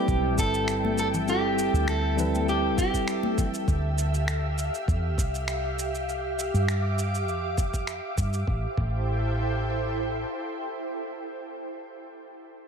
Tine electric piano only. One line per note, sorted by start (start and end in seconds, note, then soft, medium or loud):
0.00 1.26 G3 medium
0.00 1.27 C4 medium
0.00 1.29 E4 medium
0.00 1.30 A4 medium
0.00 1.25 B4 loud
1.26 2.14 G3 medium
1.26 2.14 C4 medium
1.26 2.15 E4 medium
1.26 2.15 A4 medium
2.17 3.64 G3 medium
2.17 3.64 C4 medium
2.17 3.65 E4 medium
2.17 3.65 B4 loud